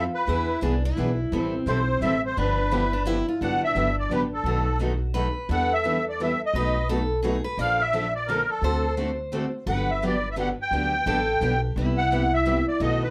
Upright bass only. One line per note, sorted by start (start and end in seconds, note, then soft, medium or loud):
0.28 0.56 E2 medium
0.62 0.92 C2 medium
0.97 1.27 B1 medium
1.32 1.60 A1 medium
1.66 1.96 B1 medium
2.01 2.31 A1 medium
2.37 3.21 G1 medium
3.41 3.69 G1 medium
3.75 4.05 G1 medium
4.09 4.40 A1 medium
4.44 5.28 B1 medium
5.49 6.33 E2 medium
6.54 7.38 B1 medium
7.57 8.42 A#1 medium
8.62 9.46 D2 medium
9.66 10.51 G1 medium
10.71 10.99 D2 medium
11.06 11.36 A1 medium
11.41 11.71 B1 medium
11.76 12.60 C2 medium
12.80 13.10 B1 medium